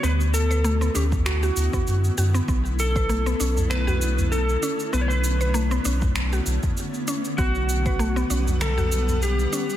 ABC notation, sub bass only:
X:1
M:4/4
L:1/8
Q:"Swing 16ths" 1/4=98
K:Bm
V:1 name="Sub bass" clef=bass
D,,3 D,,2 D,, F,, F,, | B,,,3 B,,,4 z | B,,,3 B,,,2 B,,, z2 | B,,,3 B,,,4 z |]